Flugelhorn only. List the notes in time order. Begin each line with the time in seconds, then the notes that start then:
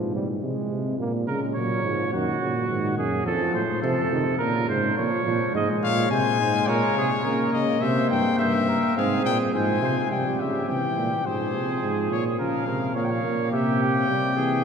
1.27 A#4
1.54 C#5
2.13 F#4
2.98 G#4
3.26 A4
3.55 C5
3.82 A4
4.39 A#4
4.69 C5
4.97 C#5
5.56 D#5
5.83 C#5
6.12 C5
6.40 C5
6.69 A#4
6.97 G#4
7.26 A#4
7.82 C5
8.40 C5
8.69 A#4
8.98 G#4
9.54 C5
9.84 C5
10.11 G4
11.26 G#4
12.39 A#4
12.67 A#4
12.95 C#5
13.52 G4
14.36 G#4